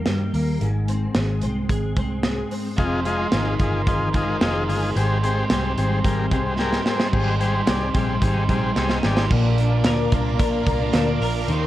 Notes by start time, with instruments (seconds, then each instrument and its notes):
Already playing: clean electric guitar D#3 A#3
0.06 fingered electric bass G2, clean electric guitar G3, snare, closed hi-hat
0.33 fingered electric bass D#2, clean electric guitar A#3, open hi-hat
0.60 fingered electric bass G#1, clean electric guitar G#2, closed hi-hat
0.88 clean electric guitar C4, closed hi-hat
1.15 fingered electric bass G#1, clean electric guitar G#3, snare, closed hi-hat
1.42 fingered electric bass C2, clean electric guitar C4, closed hi-hat
1.69 fingered electric bass G#1, clean electric guitar G#3, kick, closed hi-hat
1.96 fingered electric bass C2, clean electric guitar C4, kick, closed hi-hat
2.23 clean electric guitar G#3, snare, closed hi-hat
2.51 clean electric guitar C4, open hi-hat
2.77 fingered electric bass F1, clean electric guitar F2, overdriven electric guitar F3 C4 D#4 G#4 C5, transistor combo organ F4 G#4 D#5, kick, closed hi-hat
3.05 clean electric guitar G#3, transistor combo organ F4 G#4 D#5, closed hi-hat
3.18 overdriven electric guitar D#4 G#4 C5
3.32 fingered electric bass G#1, clean electric guitar D#3, transistor combo organ F4 G#4 D#5, snare, closed hi-hat
3.60 fingered electric bass G1, clean electric guitar G#3, transistor combo organ F4 G#4 D#5, kick, closed hi-hat
3.87 clean electric guitar D#3, transistor combo organ F4 G#4 D#5, kick, closed hi-hat
4.13 clean electric guitar G#3, overdriven electric guitar C4 D#4 G#4, transistor combo organ F4 G#4 D#5, kick, closed hi-hat
4.17 overdriven electric guitar C5
4.40 fingered electric bass F1, clean electric guitar D#3, overdriven electric guitar C4 D#4 G#4 C5, transistor combo organ F4 G#4 D#5, snare, closed hi-hat
4.68 fingered electric bass G1, clean electric guitar G#3, overdriven electric guitar C4 D#4 G#4 C5, transistor combo organ F4 G#4 D#5, open hi-hat
4.95 fingered electric bass G#1, clean electric guitar G#2, overdriven electric guitar G#3 C4 D#4 G4 C5, transistor combo organ G4 G#4 C5, closed hi-hat
5.23 clean electric guitar C4, transistor combo organ G4 G#4 C5, closed hi-hat
5.36 overdriven electric guitar D#4 G4 C5
5.50 fingered electric bass C2, clean electric guitar G3, transistor combo organ G4 G#4 C5, snare, closed hi-hat
5.77 fingered electric bass G#1, clean electric guitar C4, transistor combo organ G4 G#4 C5, closed hi-hat
6.04 fingered electric bass G#1, clean electric guitar G3, transistor combo organ G4 G#4 A#4, kick, closed hi-hat
6.31 fingered electric bass C2, clean electric guitar C4, overdriven electric guitar C4 D#4 G4 C5, transistor combo organ G4 G#4 C5, kick, closed hi-hat
6.58 clean electric guitar G3, overdriven electric guitar C4 D#4 G4 C5, transistor combo organ G4 G#4 A#4, snare
6.73 snare
6.86 clean electric guitar A#3, overdriven electric guitar C4 D#4 G4 C5, transistor combo organ G4 G#4 C5, snare
7.00 clean electric guitar C4, snare
7.12 fingered electric bass G#1, clean electric guitar G#2, overdriven electric guitar G#3 C4 D#4 G4 C5, transistor combo organ G4 G#4 C5, kick, crash
7.40 clean electric guitar G3, transistor combo organ G4 G#4 C5, closed hi-hat
7.54 overdriven electric guitar D#4 G4 C5
7.67 fingered electric bass C2, clean electric guitar C4, transistor combo organ G4 G#4 D5, snare, clap, closed hi-hat
7.94 fingered electric bass A#1, clean electric guitar G3, overdriven electric guitar C4 D#4 G4 C5, transistor combo organ G4 G#4 C5, kick, closed hi-hat
8.22 fingered electric bass G#1, clean electric guitar D#4, transistor combo organ G4 G#4 C5, kick, closed hi-hat
8.49 fingered electric bass A#1, clean electric guitar G3, overdriven electric guitar C4 D#4 G4 C5, transistor combo organ G4 G#4 C5, kick, closed hi-hat
8.76 fingered electric bass C2, overdriven electric guitar C4 D#4 G4 C5, clean electric guitar D#4, transistor combo organ G4 G#4 C5, snare, clap
8.90 snare
9.03 fingered electric bass G#1, clean electric guitar G3, transistor combo organ G4 G#4 D5, snare
9.16 overdriven electric guitar D#4 G4 C5, snare
9.30 fingered electric bass A#1, clean electric guitar A#2, overdriven electric guitar A#3 D4 F4 D5, string machine A#4 D5 F5 D6, kick, crash
9.58 clean electric guitar D4, closed hi-hat
9.70 overdriven electric guitar D4 F4 D5
9.84 fingered electric bass D2, clean electric guitar A#4, snare, clap, closed hi-hat
10.12 fingered electric bass C2, overdriven electric guitar A#3 D4 F4 D5, clean electric guitar A#3, kick, closed hi-hat
10.39 fingered electric bass A#1, overdriven electric guitar A#3 D4 F4 D5, clean electric guitar A#4, kick, closed hi-hat
10.66 fingered electric bass C2, clean electric guitar A#3, kick, closed hi-hat
10.80 overdriven electric guitar D4 F4 D5
10.94 fingered electric bass D2, clean electric guitar D4, snare, clap, closed hi-hat
11.07 overdriven electric guitar D4 F4 D5
11.21 fingered electric bass A#1, clean electric guitar A#4, open hi-hat
11.47 fingered electric bass D#2, clean electric guitar D#3, overdriven electric guitar A#3 C4 G4, string machine D#5 G5 C6, closed hi-hat
11.51 overdriven electric guitar C5